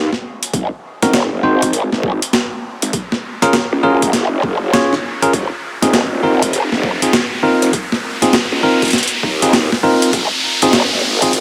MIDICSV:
0, 0, Header, 1, 5, 480
1, 0, Start_track
1, 0, Tempo, 600000
1, 429, Time_signature, 4, 2, 24, 8
1, 9124, End_track
2, 0, Start_track
2, 0, Title_t, "Tine electric piano"
2, 0, Program_c, 0, 4
2, 821, Note_on_c, 0, 60, 75
2, 821, Note_on_c, 0, 63, 71
2, 821, Note_on_c, 0, 66, 70
2, 821, Note_on_c, 0, 70, 86
2, 918, Note_off_c, 0, 60, 0
2, 918, Note_off_c, 0, 63, 0
2, 918, Note_off_c, 0, 66, 0
2, 918, Note_off_c, 0, 70, 0
2, 1146, Note_on_c, 0, 60, 75
2, 1146, Note_on_c, 0, 63, 69
2, 1146, Note_on_c, 0, 66, 70
2, 1146, Note_on_c, 0, 72, 84
2, 1361, Note_off_c, 0, 60, 0
2, 1361, Note_off_c, 0, 63, 0
2, 1361, Note_off_c, 0, 66, 0
2, 1361, Note_off_c, 0, 72, 0
2, 2737, Note_on_c, 0, 65, 85
2, 2737, Note_on_c, 0, 68, 84
2, 2738, Note_on_c, 0, 61, 94
2, 2738, Note_on_c, 0, 70, 103
2, 2836, Note_off_c, 0, 61, 0
2, 2836, Note_off_c, 0, 65, 0
2, 2836, Note_off_c, 0, 68, 0
2, 2836, Note_off_c, 0, 70, 0
2, 3066, Note_on_c, 0, 61, 89
2, 3066, Note_on_c, 0, 65, 86
2, 3066, Note_on_c, 0, 68, 83
2, 3066, Note_on_c, 0, 70, 100
2, 3281, Note_off_c, 0, 61, 0
2, 3281, Note_off_c, 0, 65, 0
2, 3281, Note_off_c, 0, 68, 0
2, 3281, Note_off_c, 0, 70, 0
2, 3786, Note_on_c, 0, 68, 78
2, 3787, Note_on_c, 0, 61, 84
2, 3787, Note_on_c, 0, 73, 92
2, 3788, Note_on_c, 0, 65, 77
2, 3946, Note_off_c, 0, 61, 0
2, 3946, Note_off_c, 0, 65, 0
2, 3946, Note_off_c, 0, 68, 0
2, 3946, Note_off_c, 0, 73, 0
2, 4179, Note_on_c, 0, 61, 87
2, 4180, Note_on_c, 0, 65, 77
2, 4180, Note_on_c, 0, 68, 83
2, 4180, Note_on_c, 0, 70, 99
2, 4257, Note_off_c, 0, 61, 0
2, 4258, Note_off_c, 0, 65, 0
2, 4258, Note_off_c, 0, 68, 0
2, 4258, Note_off_c, 0, 70, 0
2, 4658, Note_on_c, 0, 65, 65
2, 4658, Note_on_c, 0, 68, 81
2, 4659, Note_on_c, 0, 60, 73
2, 4659, Note_on_c, 0, 63, 68
2, 4757, Note_off_c, 0, 60, 0
2, 4757, Note_off_c, 0, 63, 0
2, 4757, Note_off_c, 0, 65, 0
2, 4757, Note_off_c, 0, 68, 0
2, 4986, Note_on_c, 0, 63, 65
2, 4987, Note_on_c, 0, 60, 70
2, 4987, Note_on_c, 0, 65, 68
2, 4987, Note_on_c, 0, 70, 79
2, 5201, Note_off_c, 0, 60, 0
2, 5201, Note_off_c, 0, 63, 0
2, 5201, Note_off_c, 0, 65, 0
2, 5202, Note_off_c, 0, 70, 0
2, 5618, Note_on_c, 0, 60, 68
2, 5618, Note_on_c, 0, 68, 75
2, 5619, Note_on_c, 0, 63, 65
2, 5619, Note_on_c, 0, 65, 66
2, 5717, Note_off_c, 0, 60, 0
2, 5717, Note_off_c, 0, 63, 0
2, 5717, Note_off_c, 0, 65, 0
2, 5717, Note_off_c, 0, 68, 0
2, 5943, Note_on_c, 0, 60, 73
2, 5944, Note_on_c, 0, 63, 69
2, 5944, Note_on_c, 0, 65, 68
2, 5945, Note_on_c, 0, 70, 83
2, 6160, Note_off_c, 0, 60, 0
2, 6160, Note_off_c, 0, 63, 0
2, 6160, Note_off_c, 0, 65, 0
2, 6160, Note_off_c, 0, 70, 0
2, 6577, Note_on_c, 0, 63, 70
2, 6577, Note_on_c, 0, 65, 69
2, 6577, Note_on_c, 0, 68, 85
2, 6578, Note_on_c, 0, 60, 74
2, 6676, Note_off_c, 0, 60, 0
2, 6676, Note_off_c, 0, 63, 0
2, 6676, Note_off_c, 0, 65, 0
2, 6676, Note_off_c, 0, 68, 0
2, 6904, Note_on_c, 0, 65, 69
2, 6905, Note_on_c, 0, 60, 75
2, 6905, Note_on_c, 0, 63, 67
2, 6905, Note_on_c, 0, 70, 83
2, 7120, Note_off_c, 0, 63, 0
2, 7120, Note_off_c, 0, 65, 0
2, 7120, Note_off_c, 0, 70, 0
2, 7121, Note_off_c, 0, 60, 0
2, 7538, Note_on_c, 0, 60, 76
2, 7538, Note_on_c, 0, 68, 84
2, 7539, Note_on_c, 0, 63, 70
2, 7539, Note_on_c, 0, 65, 68
2, 7637, Note_off_c, 0, 60, 0
2, 7637, Note_off_c, 0, 63, 0
2, 7637, Note_off_c, 0, 65, 0
2, 7637, Note_off_c, 0, 68, 0
2, 7865, Note_on_c, 0, 70, 87
2, 7866, Note_on_c, 0, 60, 78
2, 7866, Note_on_c, 0, 63, 72
2, 7866, Note_on_c, 0, 65, 73
2, 8081, Note_off_c, 0, 60, 0
2, 8081, Note_off_c, 0, 63, 0
2, 8081, Note_off_c, 0, 65, 0
2, 8081, Note_off_c, 0, 70, 0
2, 8499, Note_on_c, 0, 60, 80
2, 8499, Note_on_c, 0, 63, 74
2, 8500, Note_on_c, 0, 65, 71
2, 8500, Note_on_c, 0, 68, 89
2, 8574, Note_off_c, 0, 60, 0
2, 8574, Note_off_c, 0, 63, 0
2, 8574, Note_off_c, 0, 65, 0
2, 8574, Note_off_c, 0, 68, 0
2, 8978, Note_on_c, 0, 60, 78
2, 8978, Note_on_c, 0, 65, 71
2, 8978, Note_on_c, 0, 68, 89
2, 8979, Note_on_c, 0, 63, 71
2, 9053, Note_off_c, 0, 60, 0
2, 9054, Note_off_c, 0, 63, 0
2, 9054, Note_off_c, 0, 65, 0
2, 9054, Note_off_c, 0, 68, 0
2, 9124, End_track
3, 0, Start_track
3, 0, Title_t, "Wobble bass"
3, 0, Program_c, 1, 39
3, 428, Note_on_c, 1, 32, 95
3, 556, Note_off_c, 1, 32, 0
3, 822, Note_on_c, 1, 30, 90
3, 1037, Note_off_c, 1, 30, 0
3, 1061, Note_on_c, 1, 30, 96
3, 1135, Note_off_c, 1, 30, 0
3, 1146, Note_on_c, 1, 32, 97
3, 1516, Note_off_c, 1, 32, 0
3, 1540, Note_on_c, 1, 32, 94
3, 1756, Note_off_c, 1, 32, 0
3, 2261, Note_on_c, 1, 32, 90
3, 2335, Note_off_c, 1, 32, 0
3, 2981, Note_on_c, 1, 37, 95
3, 3055, Note_off_c, 1, 37, 0
3, 3068, Note_on_c, 1, 30, 101
3, 3775, Note_off_c, 1, 30, 0
3, 4268, Note_on_c, 1, 29, 91
3, 4396, Note_off_c, 1, 29, 0
3, 4660, Note_on_c, 1, 27, 93
3, 4876, Note_off_c, 1, 27, 0
3, 4899, Note_on_c, 1, 27, 97
3, 4974, Note_off_c, 1, 27, 0
3, 4986, Note_on_c, 1, 29, 102
3, 5356, Note_off_c, 1, 29, 0
3, 5380, Note_on_c, 1, 29, 97
3, 5596, Note_off_c, 1, 29, 0
3, 6099, Note_on_c, 1, 29, 95
3, 6174, Note_off_c, 1, 29, 0
3, 6818, Note_on_c, 1, 37, 97
3, 6893, Note_off_c, 1, 37, 0
3, 7386, Note_on_c, 1, 39, 95
3, 7756, Note_off_c, 1, 39, 0
3, 8106, Note_on_c, 1, 32, 101
3, 8235, Note_off_c, 1, 32, 0
3, 8500, Note_on_c, 1, 30, 102
3, 8716, Note_off_c, 1, 30, 0
3, 8740, Note_on_c, 1, 30, 99
3, 8814, Note_off_c, 1, 30, 0
3, 8826, Note_on_c, 1, 32, 99
3, 9124, Note_off_c, 1, 32, 0
3, 9124, End_track
4, 0, Start_track
4, 0, Title_t, "Riser"
4, 0, Program_c, 2, 103
4, 0, Note_on_c, 2, 60, 74
4, 9124, Note_off_c, 2, 60, 0
4, 9124, End_track
5, 0, Start_track
5, 0, Title_t, "Drums"
5, 100, Note_on_c, 9, 40, 39
5, 180, Note_off_c, 9, 40, 0
5, 341, Note_on_c, 9, 42, 69
5, 421, Note_off_c, 9, 42, 0
5, 428, Note_on_c, 9, 36, 120
5, 428, Note_on_c, 9, 42, 50
5, 508, Note_off_c, 9, 36, 0
5, 508, Note_off_c, 9, 42, 0
5, 820, Note_on_c, 9, 40, 37
5, 820, Note_on_c, 9, 42, 64
5, 900, Note_off_c, 9, 40, 0
5, 900, Note_off_c, 9, 42, 0
5, 908, Note_on_c, 9, 38, 119
5, 908, Note_on_c, 9, 42, 53
5, 988, Note_off_c, 9, 38, 0
5, 988, Note_off_c, 9, 42, 0
5, 1299, Note_on_c, 9, 42, 62
5, 1300, Note_on_c, 9, 36, 61
5, 1379, Note_off_c, 9, 42, 0
5, 1380, Note_off_c, 9, 36, 0
5, 1386, Note_on_c, 9, 42, 52
5, 1466, Note_off_c, 9, 42, 0
5, 1540, Note_on_c, 9, 40, 37
5, 1620, Note_off_c, 9, 40, 0
5, 1627, Note_on_c, 9, 36, 105
5, 1707, Note_off_c, 9, 36, 0
5, 1779, Note_on_c, 9, 42, 66
5, 1859, Note_off_c, 9, 42, 0
5, 1866, Note_on_c, 9, 38, 114
5, 1866, Note_on_c, 9, 42, 49
5, 1946, Note_off_c, 9, 38, 0
5, 1946, Note_off_c, 9, 42, 0
5, 2258, Note_on_c, 9, 42, 68
5, 2338, Note_off_c, 9, 42, 0
5, 2346, Note_on_c, 9, 42, 51
5, 2347, Note_on_c, 9, 36, 117
5, 2426, Note_off_c, 9, 42, 0
5, 2427, Note_off_c, 9, 36, 0
5, 2497, Note_on_c, 9, 40, 35
5, 2577, Note_off_c, 9, 40, 0
5, 2738, Note_on_c, 9, 40, 36
5, 2738, Note_on_c, 9, 42, 62
5, 2818, Note_off_c, 9, 40, 0
5, 2818, Note_off_c, 9, 42, 0
5, 2826, Note_on_c, 9, 38, 114
5, 2826, Note_on_c, 9, 42, 53
5, 2906, Note_off_c, 9, 38, 0
5, 2906, Note_off_c, 9, 42, 0
5, 3218, Note_on_c, 9, 42, 62
5, 3220, Note_on_c, 9, 36, 102
5, 3298, Note_off_c, 9, 42, 0
5, 3300, Note_off_c, 9, 36, 0
5, 3306, Note_on_c, 9, 38, 61
5, 3306, Note_on_c, 9, 42, 51
5, 3386, Note_off_c, 9, 38, 0
5, 3386, Note_off_c, 9, 42, 0
5, 3547, Note_on_c, 9, 36, 110
5, 3627, Note_off_c, 9, 36, 0
5, 3788, Note_on_c, 9, 38, 116
5, 3788, Note_on_c, 9, 42, 50
5, 3868, Note_off_c, 9, 38, 0
5, 3868, Note_off_c, 9, 42, 0
5, 3941, Note_on_c, 9, 40, 38
5, 4021, Note_off_c, 9, 40, 0
5, 4180, Note_on_c, 9, 42, 63
5, 4260, Note_off_c, 9, 42, 0
5, 4267, Note_on_c, 9, 36, 118
5, 4268, Note_on_c, 9, 42, 50
5, 4347, Note_off_c, 9, 36, 0
5, 4348, Note_off_c, 9, 42, 0
5, 4660, Note_on_c, 9, 40, 35
5, 4660, Note_on_c, 9, 42, 64
5, 4740, Note_off_c, 9, 40, 0
5, 4740, Note_off_c, 9, 42, 0
5, 4747, Note_on_c, 9, 38, 111
5, 4747, Note_on_c, 9, 42, 48
5, 4827, Note_off_c, 9, 38, 0
5, 4827, Note_off_c, 9, 42, 0
5, 5140, Note_on_c, 9, 36, 59
5, 5140, Note_on_c, 9, 42, 59
5, 5220, Note_off_c, 9, 36, 0
5, 5220, Note_off_c, 9, 42, 0
5, 5226, Note_on_c, 9, 42, 48
5, 5306, Note_off_c, 9, 42, 0
5, 5378, Note_on_c, 9, 40, 37
5, 5458, Note_off_c, 9, 40, 0
5, 5468, Note_on_c, 9, 36, 111
5, 5548, Note_off_c, 9, 36, 0
5, 5618, Note_on_c, 9, 42, 60
5, 5698, Note_off_c, 9, 42, 0
5, 5706, Note_on_c, 9, 38, 118
5, 5706, Note_on_c, 9, 42, 49
5, 5786, Note_off_c, 9, 38, 0
5, 5786, Note_off_c, 9, 42, 0
5, 6098, Note_on_c, 9, 42, 68
5, 6178, Note_off_c, 9, 42, 0
5, 6185, Note_on_c, 9, 42, 47
5, 6187, Note_on_c, 9, 36, 118
5, 6265, Note_off_c, 9, 42, 0
5, 6267, Note_off_c, 9, 36, 0
5, 6338, Note_on_c, 9, 40, 36
5, 6418, Note_off_c, 9, 40, 0
5, 6577, Note_on_c, 9, 40, 38
5, 6577, Note_on_c, 9, 42, 62
5, 6657, Note_off_c, 9, 40, 0
5, 6657, Note_off_c, 9, 42, 0
5, 6665, Note_on_c, 9, 38, 116
5, 6665, Note_on_c, 9, 42, 50
5, 6745, Note_off_c, 9, 38, 0
5, 6745, Note_off_c, 9, 42, 0
5, 7058, Note_on_c, 9, 36, 102
5, 7058, Note_on_c, 9, 42, 28
5, 7080, Note_off_c, 9, 42, 0
5, 7080, Note_on_c, 9, 42, 33
5, 7102, Note_off_c, 9, 42, 0
5, 7102, Note_on_c, 9, 42, 35
5, 7124, Note_off_c, 9, 42, 0
5, 7124, Note_on_c, 9, 42, 37
5, 7138, Note_off_c, 9, 36, 0
5, 7146, Note_off_c, 9, 42, 0
5, 7146, Note_on_c, 9, 38, 58
5, 7146, Note_on_c, 9, 42, 49
5, 7184, Note_off_c, 9, 42, 0
5, 7184, Note_on_c, 9, 42, 48
5, 7223, Note_off_c, 9, 42, 0
5, 7223, Note_on_c, 9, 42, 51
5, 7226, Note_off_c, 9, 38, 0
5, 7260, Note_off_c, 9, 42, 0
5, 7260, Note_on_c, 9, 42, 54
5, 7340, Note_off_c, 9, 42, 0
5, 7386, Note_on_c, 9, 36, 108
5, 7466, Note_off_c, 9, 36, 0
5, 7539, Note_on_c, 9, 42, 61
5, 7619, Note_off_c, 9, 42, 0
5, 7626, Note_on_c, 9, 38, 111
5, 7626, Note_on_c, 9, 42, 50
5, 7706, Note_off_c, 9, 38, 0
5, 7706, Note_off_c, 9, 42, 0
5, 7779, Note_on_c, 9, 40, 42
5, 7859, Note_off_c, 9, 40, 0
5, 8018, Note_on_c, 9, 42, 65
5, 8098, Note_off_c, 9, 42, 0
5, 8105, Note_on_c, 9, 42, 49
5, 8106, Note_on_c, 9, 36, 117
5, 8185, Note_off_c, 9, 42, 0
5, 8186, Note_off_c, 9, 36, 0
5, 8497, Note_on_c, 9, 42, 65
5, 8577, Note_off_c, 9, 42, 0
5, 8584, Note_on_c, 9, 38, 117
5, 8584, Note_on_c, 9, 42, 53
5, 8664, Note_off_c, 9, 38, 0
5, 8664, Note_off_c, 9, 42, 0
5, 8976, Note_on_c, 9, 42, 62
5, 8979, Note_on_c, 9, 36, 59
5, 9056, Note_off_c, 9, 42, 0
5, 9059, Note_off_c, 9, 36, 0
5, 9065, Note_on_c, 9, 42, 52
5, 9124, Note_off_c, 9, 42, 0
5, 9124, End_track
0, 0, End_of_file